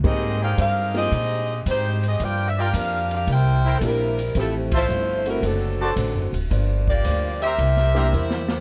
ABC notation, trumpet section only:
X:1
M:4/4
L:1/8
Q:"Swing" 1/4=111
K:Gdor
V:1 name="Trumpet section"
z [_E_Acg]3 z4 | z [FBdg] z3 [EBcg] z2 | z [Fcea] z3 [^Fcda] z2 | z3 [Gceb] z [Gceb] z2 |]